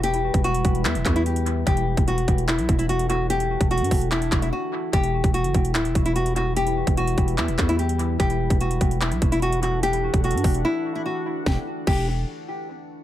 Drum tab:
CC |------------------------------------------------|------------------------------------------------|------------------------------------------------|------------------------------------------------|
HH |x--x-----x--x--x--x--x--x--x--x--x--x--x--x-----|x--x-----x--x--x--x--x--x--x--x--x--x--x--x-----|x--x-----x--x-x-x-o--x--x--x--x--x--------------|x--x-----x--x--x--x--x--x--x--x--x--x--x--x-----|
CP |------------------------x-----x-----------------|------------------------x-----------------------|------------------------x-----x-----------------|------------------------x-----------------------|
SD |------------------------------------------------|------------------------------------------------|------------------------------------------------|------------------------------------------------|
BD |---------o--------o-----------o-----------------|o--------o--------o-----------o-----------------|---------o--------o-----------o-----------------|o--------o--------o-----------o-----------------|

CC |------------------------------------------------|------------------------------------------------|------------------------------------------------|------------x-----------------------------------|
HH |x--x-----x--x--x--x--x--x--x--x--x--x--x--x-----|x--x-----x--x--x--x--x--x--x--x--x--x--x--x-----|x--x-----x--x-x-x-o--x--------------------------|------------------------------------------------|
CP |------------------------x-----x-----------------|------------------------x-----------------------|------------------------------------------------|------------------------------------------------|
SD |------------------------------------------------|------------------------------------------------|------------------------------------------------|o-----------------------------------------------|
BD |---------o--------o-----------o-----------------|o--------o--------o-----------o-----------------|---------o--------o-----------------------------|o-----------o-----------------------------------|